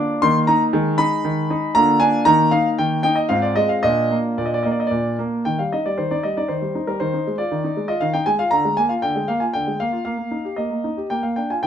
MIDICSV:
0, 0, Header, 1, 2, 480
1, 0, Start_track
1, 0, Key_signature, -3, "major"
1, 0, Tempo, 510638
1, 688, Time_signature, 3, 2, 24, 8
1, 3098, Tempo, 539084
1, 5498, Tempo, 508044
1, 8858, Tempo, 521739
1, 10810, End_track
2, 0, Start_track
2, 0, Title_t, "Grand piano"
2, 0, Program_c, 0, 0
2, 0, Note_on_c, 0, 58, 50
2, 0, Note_on_c, 0, 62, 60
2, 0, Note_on_c, 0, 65, 51
2, 0, Note_on_c, 0, 86, 102
2, 180, Note_off_c, 0, 58, 0
2, 180, Note_off_c, 0, 65, 0
2, 207, Note_on_c, 0, 84, 98
2, 208, Note_off_c, 0, 62, 0
2, 211, Note_off_c, 0, 86, 0
2, 213, Note_on_c, 0, 58, 48
2, 214, Note_on_c, 0, 51, 70
2, 214, Note_on_c, 0, 63, 48
2, 351, Note_off_c, 0, 84, 0
2, 442, Note_off_c, 0, 63, 0
2, 443, Note_off_c, 0, 51, 0
2, 445, Note_on_c, 0, 82, 83
2, 456, Note_on_c, 0, 63, 64
2, 589, Note_off_c, 0, 82, 0
2, 654, Note_off_c, 0, 58, 0
2, 684, Note_off_c, 0, 63, 0
2, 687, Note_on_c, 0, 51, 73
2, 687, Note_on_c, 0, 68, 51
2, 691, Note_on_c, 0, 56, 48
2, 917, Note_off_c, 0, 51, 0
2, 920, Note_on_c, 0, 83, 98
2, 927, Note_on_c, 0, 63, 64
2, 1157, Note_off_c, 0, 63, 0
2, 1171, Note_on_c, 0, 51, 60
2, 1398, Note_off_c, 0, 51, 0
2, 1414, Note_on_c, 0, 63, 60
2, 1602, Note_off_c, 0, 68, 0
2, 1603, Note_off_c, 0, 56, 0
2, 1637, Note_off_c, 0, 83, 0
2, 1639, Note_off_c, 0, 63, 0
2, 1643, Note_on_c, 0, 82, 101
2, 1645, Note_on_c, 0, 65, 49
2, 1648, Note_on_c, 0, 58, 51
2, 1649, Note_on_c, 0, 50, 68
2, 1876, Note_off_c, 0, 50, 0
2, 1877, Note_on_c, 0, 80, 100
2, 1880, Note_off_c, 0, 82, 0
2, 1887, Note_on_c, 0, 62, 64
2, 2089, Note_off_c, 0, 65, 0
2, 2091, Note_off_c, 0, 58, 0
2, 2117, Note_off_c, 0, 62, 0
2, 2117, Note_on_c, 0, 82, 103
2, 2119, Note_off_c, 0, 80, 0
2, 2124, Note_on_c, 0, 63, 53
2, 2125, Note_on_c, 0, 51, 73
2, 2126, Note_on_c, 0, 58, 48
2, 2355, Note_off_c, 0, 63, 0
2, 2359, Note_off_c, 0, 51, 0
2, 2362, Note_off_c, 0, 82, 0
2, 2362, Note_on_c, 0, 77, 89
2, 2369, Note_on_c, 0, 63, 62
2, 2509, Note_off_c, 0, 77, 0
2, 2604, Note_off_c, 0, 63, 0
2, 2618, Note_on_c, 0, 79, 77
2, 2624, Note_on_c, 0, 51, 58
2, 2836, Note_off_c, 0, 79, 0
2, 2850, Note_on_c, 0, 79, 86
2, 2854, Note_off_c, 0, 51, 0
2, 2860, Note_on_c, 0, 63, 57
2, 2966, Note_on_c, 0, 75, 61
2, 2974, Note_off_c, 0, 79, 0
2, 3065, Note_off_c, 0, 58, 0
2, 3090, Note_on_c, 0, 77, 86
2, 3095, Note_off_c, 0, 75, 0
2, 3096, Note_off_c, 0, 63, 0
2, 3096, Note_on_c, 0, 65, 42
2, 3098, Note_on_c, 0, 60, 45
2, 3100, Note_on_c, 0, 44, 63
2, 3209, Note_on_c, 0, 74, 57
2, 3214, Note_off_c, 0, 77, 0
2, 3329, Note_on_c, 0, 75, 79
2, 3331, Note_off_c, 0, 44, 0
2, 3333, Note_off_c, 0, 74, 0
2, 3338, Note_on_c, 0, 56, 58
2, 3448, Note_on_c, 0, 77, 67
2, 3454, Note_off_c, 0, 75, 0
2, 3544, Note_off_c, 0, 65, 0
2, 3545, Note_off_c, 0, 60, 0
2, 3571, Note_on_c, 0, 75, 90
2, 3573, Note_off_c, 0, 56, 0
2, 3575, Note_off_c, 0, 77, 0
2, 3578, Note_on_c, 0, 65, 42
2, 3580, Note_on_c, 0, 46, 61
2, 3580, Note_on_c, 0, 62, 43
2, 3815, Note_off_c, 0, 46, 0
2, 3822, Note_on_c, 0, 58, 54
2, 3864, Note_off_c, 0, 75, 0
2, 4057, Note_off_c, 0, 58, 0
2, 4062, Note_on_c, 0, 46, 50
2, 4063, Note_on_c, 0, 74, 55
2, 4130, Note_on_c, 0, 75, 51
2, 4139, Note_off_c, 0, 74, 0
2, 4206, Note_on_c, 0, 74, 57
2, 4210, Note_off_c, 0, 75, 0
2, 4285, Note_on_c, 0, 75, 52
2, 4286, Note_off_c, 0, 74, 0
2, 4298, Note_off_c, 0, 46, 0
2, 4304, Note_on_c, 0, 58, 49
2, 4361, Note_on_c, 0, 74, 52
2, 4364, Note_off_c, 0, 75, 0
2, 4436, Note_on_c, 0, 75, 53
2, 4439, Note_off_c, 0, 74, 0
2, 4498, Note_on_c, 0, 74, 62
2, 4514, Note_off_c, 0, 75, 0
2, 4535, Note_on_c, 0, 46, 49
2, 4540, Note_off_c, 0, 58, 0
2, 4753, Note_off_c, 0, 74, 0
2, 4776, Note_off_c, 0, 46, 0
2, 4784, Note_on_c, 0, 58, 55
2, 4993, Note_off_c, 0, 65, 0
2, 4994, Note_off_c, 0, 62, 0
2, 5018, Note_on_c, 0, 79, 63
2, 5019, Note_off_c, 0, 58, 0
2, 5025, Note_on_c, 0, 51, 41
2, 5139, Note_on_c, 0, 77, 54
2, 5142, Note_off_c, 0, 51, 0
2, 5142, Note_off_c, 0, 79, 0
2, 5142, Note_on_c, 0, 55, 30
2, 5261, Note_off_c, 0, 77, 0
2, 5261, Note_on_c, 0, 75, 56
2, 5269, Note_off_c, 0, 55, 0
2, 5270, Note_on_c, 0, 63, 35
2, 5378, Note_on_c, 0, 74, 53
2, 5379, Note_on_c, 0, 55, 32
2, 5381, Note_off_c, 0, 75, 0
2, 5391, Note_off_c, 0, 63, 0
2, 5484, Note_on_c, 0, 72, 57
2, 5492, Note_on_c, 0, 51, 34
2, 5497, Note_off_c, 0, 74, 0
2, 5504, Note_off_c, 0, 55, 0
2, 5610, Note_on_c, 0, 74, 55
2, 5614, Note_off_c, 0, 72, 0
2, 5614, Note_on_c, 0, 63, 33
2, 5615, Note_off_c, 0, 51, 0
2, 5727, Note_on_c, 0, 75, 54
2, 5738, Note_off_c, 0, 74, 0
2, 5740, Note_on_c, 0, 55, 31
2, 5746, Note_off_c, 0, 63, 0
2, 5856, Note_off_c, 0, 75, 0
2, 5857, Note_on_c, 0, 74, 54
2, 5861, Note_on_c, 0, 63, 33
2, 5869, Note_off_c, 0, 55, 0
2, 5963, Note_on_c, 0, 72, 53
2, 5972, Note_on_c, 0, 51, 36
2, 5981, Note_off_c, 0, 74, 0
2, 5989, Note_off_c, 0, 63, 0
2, 6090, Note_on_c, 0, 55, 30
2, 6094, Note_off_c, 0, 51, 0
2, 6217, Note_on_c, 0, 63, 38
2, 6223, Note_off_c, 0, 55, 0
2, 6332, Note_on_c, 0, 70, 55
2, 6333, Note_off_c, 0, 72, 0
2, 6334, Note_on_c, 0, 55, 39
2, 6347, Note_off_c, 0, 63, 0
2, 6450, Note_on_c, 0, 72, 66
2, 6459, Note_off_c, 0, 70, 0
2, 6459, Note_on_c, 0, 51, 50
2, 6460, Note_off_c, 0, 55, 0
2, 6579, Note_off_c, 0, 51, 0
2, 6580, Note_on_c, 0, 63, 36
2, 6709, Note_off_c, 0, 63, 0
2, 6709, Note_on_c, 0, 56, 39
2, 6782, Note_off_c, 0, 72, 0
2, 6811, Note_on_c, 0, 74, 63
2, 6818, Note_on_c, 0, 65, 38
2, 6834, Note_off_c, 0, 56, 0
2, 6938, Note_on_c, 0, 51, 45
2, 6949, Note_off_c, 0, 65, 0
2, 7058, Note_on_c, 0, 63, 40
2, 7059, Note_off_c, 0, 51, 0
2, 7176, Note_on_c, 0, 56, 41
2, 7189, Note_off_c, 0, 63, 0
2, 7283, Note_on_c, 0, 75, 66
2, 7288, Note_on_c, 0, 65, 44
2, 7299, Note_off_c, 0, 74, 0
2, 7308, Note_off_c, 0, 56, 0
2, 7402, Note_on_c, 0, 77, 77
2, 7412, Note_on_c, 0, 51, 48
2, 7414, Note_off_c, 0, 75, 0
2, 7423, Note_off_c, 0, 65, 0
2, 7523, Note_on_c, 0, 79, 68
2, 7531, Note_on_c, 0, 63, 40
2, 7533, Note_off_c, 0, 77, 0
2, 7534, Note_off_c, 0, 51, 0
2, 7641, Note_on_c, 0, 80, 78
2, 7648, Note_on_c, 0, 56, 45
2, 7653, Note_off_c, 0, 79, 0
2, 7663, Note_off_c, 0, 63, 0
2, 7764, Note_on_c, 0, 77, 74
2, 7771, Note_off_c, 0, 80, 0
2, 7771, Note_on_c, 0, 65, 43
2, 7781, Note_off_c, 0, 56, 0
2, 7875, Note_on_c, 0, 82, 82
2, 7884, Note_on_c, 0, 50, 57
2, 7892, Note_off_c, 0, 77, 0
2, 7896, Note_off_c, 0, 65, 0
2, 8008, Note_off_c, 0, 50, 0
2, 8008, Note_on_c, 0, 56, 44
2, 8101, Note_off_c, 0, 82, 0
2, 8123, Note_on_c, 0, 80, 78
2, 8132, Note_on_c, 0, 58, 44
2, 8139, Note_off_c, 0, 56, 0
2, 8238, Note_on_c, 0, 77, 55
2, 8246, Note_on_c, 0, 65, 41
2, 8250, Note_off_c, 0, 80, 0
2, 8261, Note_off_c, 0, 58, 0
2, 8362, Note_on_c, 0, 79, 70
2, 8367, Note_off_c, 0, 77, 0
2, 8367, Note_on_c, 0, 50, 48
2, 8378, Note_off_c, 0, 65, 0
2, 8488, Note_off_c, 0, 50, 0
2, 8488, Note_on_c, 0, 56, 42
2, 8605, Note_on_c, 0, 77, 72
2, 8610, Note_off_c, 0, 79, 0
2, 8613, Note_on_c, 0, 58, 43
2, 8619, Note_off_c, 0, 56, 0
2, 8720, Note_on_c, 0, 80, 55
2, 8728, Note_on_c, 0, 65, 39
2, 8732, Note_off_c, 0, 77, 0
2, 8742, Note_off_c, 0, 58, 0
2, 8846, Note_on_c, 0, 79, 67
2, 8849, Note_off_c, 0, 80, 0
2, 8857, Note_on_c, 0, 50, 44
2, 8859, Note_off_c, 0, 65, 0
2, 8972, Note_off_c, 0, 50, 0
2, 8974, Note_on_c, 0, 56, 32
2, 9088, Note_off_c, 0, 79, 0
2, 9090, Note_on_c, 0, 77, 67
2, 9099, Note_off_c, 0, 56, 0
2, 9099, Note_on_c, 0, 58, 37
2, 9206, Note_on_c, 0, 65, 36
2, 9222, Note_off_c, 0, 58, 0
2, 9305, Note_off_c, 0, 77, 0
2, 9319, Note_on_c, 0, 77, 67
2, 9326, Note_on_c, 0, 58, 43
2, 9330, Note_off_c, 0, 65, 0
2, 9428, Note_off_c, 0, 58, 0
2, 9441, Note_on_c, 0, 58, 30
2, 9562, Note_on_c, 0, 63, 34
2, 9574, Note_off_c, 0, 58, 0
2, 9688, Note_on_c, 0, 67, 29
2, 9695, Note_off_c, 0, 63, 0
2, 9771, Note_off_c, 0, 77, 0
2, 9794, Note_on_c, 0, 75, 49
2, 9805, Note_on_c, 0, 58, 35
2, 9817, Note_off_c, 0, 67, 0
2, 9912, Note_off_c, 0, 58, 0
2, 9926, Note_on_c, 0, 58, 30
2, 10049, Note_on_c, 0, 63, 30
2, 10056, Note_off_c, 0, 58, 0
2, 10170, Note_on_c, 0, 67, 30
2, 10178, Note_off_c, 0, 63, 0
2, 10248, Note_off_c, 0, 75, 0
2, 10287, Note_on_c, 0, 79, 58
2, 10291, Note_on_c, 0, 58, 39
2, 10293, Note_off_c, 0, 67, 0
2, 10392, Note_off_c, 0, 58, 0
2, 10405, Note_on_c, 0, 58, 28
2, 10405, Note_on_c, 0, 77, 48
2, 10412, Note_off_c, 0, 79, 0
2, 10527, Note_on_c, 0, 79, 56
2, 10532, Note_off_c, 0, 77, 0
2, 10538, Note_off_c, 0, 58, 0
2, 10539, Note_on_c, 0, 62, 32
2, 10653, Note_off_c, 0, 79, 0
2, 10657, Note_on_c, 0, 80, 55
2, 10660, Note_on_c, 0, 65, 32
2, 10665, Note_off_c, 0, 62, 0
2, 10771, Note_on_c, 0, 79, 73
2, 10778, Note_off_c, 0, 80, 0
2, 10778, Note_on_c, 0, 51, 49
2, 10779, Note_off_c, 0, 65, 0
2, 10810, Note_off_c, 0, 51, 0
2, 10810, Note_off_c, 0, 79, 0
2, 10810, End_track
0, 0, End_of_file